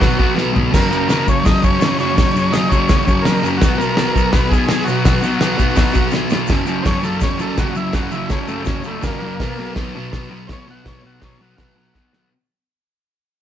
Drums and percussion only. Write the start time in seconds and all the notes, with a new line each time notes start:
0.02 kick, snare, open hi-hat
0.20 kick
0.38 snare
0.56 floor tom
0.74 kick, snare, crash, splash, shaker
0.92 shaker
1.10 snare, open hi-hat, shaker
1.27 kick, shaker
1.46 kick, snare, open hi-hat, shaker
1.63 kick, shaker
1.81 snare, open hi-hat, shaker
1.99 shaker
2.17 kick, snare, open hi-hat, shaker
2.36 shaker
2.53 snare, open hi-hat, shaker
2.72 kick, shaker
2.89 kick, snare, open hi-hat, shaker
3.08 kick, shaker
3.25 snare, open hi-hat, shaker
3.45 shaker
3.62 kick, snare, open hi-hat, shaker
3.81 shaker
3.97 snare, open hi-hat, shaker
4.16 kick, shaker
4.33 kick, snare, open hi-hat, shaker
4.52 kick, shaker
4.69 snare, open hi-hat, shaker
4.88 shaker
5.05 kick, snare, open hi-hat, shaker
5.23 shaker
5.41 snare, open hi-hat, shaker
5.59 kick, shaker
5.76 kick, snare, open hi-hat, shaker
5.95 kick, shaker
6.11 snare, shaker
6.30 snare, shaker
6.47 kick, snare, crash, shaker
6.66 shaker
6.85 kick, snare, open hi-hat, shaker
7.03 shaker
7.21 kick, snare, open hi-hat, shaker
7.39 shaker
7.58 kick, snare, open hi-hat, shaker
7.75 shaker
7.93 kick, snare, open hi-hat, shaker
8.11 shaker
8.30 kick, snare, open hi-hat, shaker
8.48 shaker
8.65 kick, snare, open hi-hat, shaker
8.83 shaker
9.02 kick, snare, open hi-hat, shaker
9.40 kick, snare, open hi-hat
9.76 kick, snare, open hi-hat
10.13 kick, snare, open hi-hat
10.49 kick, snare, open hi-hat
10.86 kick, snare, open hi-hat
11.22 kick, snare, open hi-hat
11.58 kick, snare, open hi-hat
11.95 kick, snare
12.13 snare